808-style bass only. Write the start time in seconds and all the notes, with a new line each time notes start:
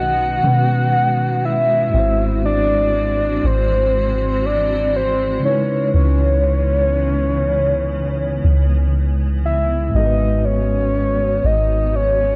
Already playing: B1
0.44 B2
1.94 G#1
3.44 G#1
5.94 C#2
8.44 C#2
9.94 G#1
11.44 G#1